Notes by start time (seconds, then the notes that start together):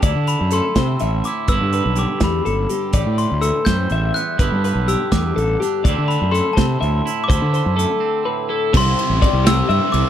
0.02 D2 D3 E4 D5, kick, closed hi-hat
0.15 D3
0.27 B5, closed hi-hat
0.41 F#2
0.51 A3 A4 C6, closed hi-hat
0.75 C3 C4 C5, kick, snare, closed hi-hat
0.99 A1 A2 E5, closed hi-hat
1.24 E4 D6, closed hi-hat
1.48 G1 G2 D3 B3 D4 B4 E6, kick, closed hi-hat
1.52 E4
1.61 G2
1.73 B4, closed hi-hat
1.86 B1
1.96 D3 G4 D6, closed hi-hat
2.20 E2 B5, kick, snare, closed hi-hat
2.45 G1 F#2 A4, closed hi-hat
2.69 G2 G4, closed hi-hat
2.93 A1 A2 G4 D5, kick, closed hi-hat
3.06 A2
3.18 C6, closed hi-hat
3.31 D2
3.41 E3 A4 E6, closed hi-hat
3.65 F#2 G3 C5 G6, kick, snare, closed hi-hat
3.90 A1 E2 E5, closed hi-hat
4.14 B3 F#6, closed hi-hat
4.38 G1 G2 D3 B3 D4 E4 B4, kick, closed hi-hat
4.52 G2
4.64 B4, closed hi-hat
4.75 B1
4.88 D3 G4 E6, closed hi-hat
5.12 E2 B3 D6, kick, snare, closed hi-hat
5.36 A1 G2 A4, closed hi-hat
5.60 D4 G4, closed hi-hat
5.84 D2 D3 A3 C4 E4 D5, kick, closed hi-hat
5.98 D3
6.08 B5, closed hi-hat
6.22 F#2
6.32 A3 A4 C6, closed hi-hat
6.53 C3 C5 A5
6.57 C4, kick, snare, closed hi-hat
6.80 D2 A2 E5, closed hi-hat
7.06 E4, closed hi-hat
7.24 D6
7.28 D2 D3 E4 C5, kick, closed hi-hat
7.42 D3
7.53 C5, closed hi-hat
7.66 F#2
7.76 A3 A4, closed hi-hat
8.00 C4
8.25 A2 B4
8.49 E4 A4
8.73 C2 C3 G3 C4 E4 G4 C5 C6, kick, crash
8.99 C4 E4 G4, ride
9.10 A1
9.21 G3 C4 E4 G4 D5, kick, ride
9.33 C2
9.44 C3 G3 C4 E4 G4 E6, snare, ride
9.67 G2 G3 C4 E4 G4 E5 E6, ride
9.92 C2 D6, ride